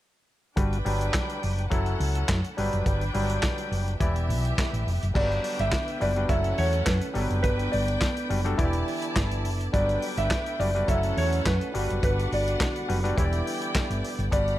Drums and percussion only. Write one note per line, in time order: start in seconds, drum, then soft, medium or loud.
0.57 kick medium
0.57 closed hi-hat medium
0.73 closed hi-hat soft
0.86 open hi-hat medium
1.01 closed hi-hat medium
1.14 kick loud
1.14 snare loud
1.14 clap medium
1.14 closed hi-hat medium
1.29 closed hi-hat soft
1.43 open hi-hat medium
1.58 closed hi-hat soft
1.71 kick loud
1.71 closed hi-hat medium
1.86 closed hi-hat soft
2.00 open hi-hat medium
2.15 closed hi-hat medium
2.28 kick medium
2.28 snare loud
2.28 clap medium
2.28 closed hi-hat medium
2.44 closed hi-hat soft
2.58 open hi-hat medium
2.73 closed hi-hat soft
2.86 kick medium
2.86 closed hi-hat medium
3.01 closed hi-hat soft
3.14 open hi-hat medium
3.29 closed hi-hat medium
3.43 kick loud
3.43 snare loud
3.43 clap medium
3.43 closed hi-hat medium
3.58 closed hi-hat soft
3.72 open hi-hat medium
3.88 closed hi-hat soft
4.00 kick loud
4.00 closed hi-hat medium
4.16 closed hi-hat soft
4.30 open hi-hat medium
4.45 closed hi-hat medium
4.58 kick loud
4.58 snare loud
4.58 clap medium
4.58 closed hi-hat medium
4.74 closed hi-hat soft
4.88 open hi-hat medium
5.02 closed hi-hat soft
5.15 kick loud
5.15 crash medium
5.31 closed hi-hat soft
5.44 open hi-hat medium
5.59 closed hi-hat medium
5.72 kick loud
5.72 snare loud
5.72 clap medium
5.72 closed hi-hat medium
5.88 closed hi-hat soft
6.01 open hi-hat medium
6.16 closed hi-hat soft
6.29 kick loud
6.29 closed hi-hat medium
6.44 closed hi-hat soft
6.58 open hi-hat medium
6.73 closed hi-hat medium
6.86 kick loud
6.86 snare loud
6.86 clap medium
6.86 closed hi-hat medium
7.01 closed hi-hat soft
7.15 open hi-hat medium
7.30 closed hi-hat soft
7.44 kick loud
7.44 closed hi-hat medium
7.59 closed hi-hat soft
7.73 open hi-hat medium
7.88 closed hi-hat medium
8.01 kick medium
8.01 snare medium
8.01 clap medium
8.01 closed hi-hat medium
8.17 closed hi-hat soft
8.30 open hi-hat medium
8.46 closed hi-hat soft
8.59 kick loud
8.59 closed hi-hat medium
8.73 closed hi-hat soft
8.88 open hi-hat medium
9.02 closed hi-hat medium
9.16 kick loud
9.16 snare loud
9.16 clap medium
9.16 closed hi-hat medium
9.31 closed hi-hat soft
9.45 open hi-hat medium
9.60 closed hi-hat soft
9.74 kick loud
9.74 closed hi-hat medium
9.89 closed hi-hat soft
10.02 open hi-hat medium
10.17 closed hi-hat medium
10.31 kick loud
10.31 snare loud
10.31 clap medium
10.31 closed hi-hat medium
10.46 closed hi-hat soft
10.60 open hi-hat medium
10.76 closed hi-hat soft
10.88 kick loud
10.88 closed hi-hat medium
11.03 closed hi-hat soft
11.17 open hi-hat medium
11.33 closed hi-hat medium
11.46 kick loud
11.46 snare loud
11.46 clap medium
11.46 closed hi-hat medium
11.61 closed hi-hat soft
11.75 open hi-hat medium
11.90 closed hi-hat soft
12.03 kick loud
12.03 closed hi-hat medium
12.19 closed hi-hat soft
12.32 open hi-hat medium
12.47 closed hi-hat medium
12.60 kick loud
12.60 snare loud
12.60 clap medium
12.60 closed hi-hat medium
12.76 closed hi-hat soft
12.89 open hi-hat medium
13.05 closed hi-hat soft
13.18 kick loud
13.18 closed hi-hat medium
13.32 closed hi-hat soft
13.47 open hi-hat medium
13.62 closed hi-hat medium
13.75 kick loud
13.75 snare loud
13.75 clap medium
13.75 closed hi-hat medium
13.90 closed hi-hat soft
14.04 open hi-hat medium
14.20 closed hi-hat soft
14.32 kick loud
14.32 closed hi-hat medium
14.48 closed hi-hat soft